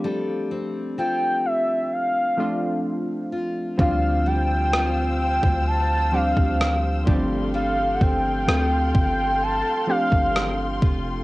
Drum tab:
SD |----------------|----r-------r---|----r-------r---|
BD |----------------|o------o---o--o-|--o---o----o--o-|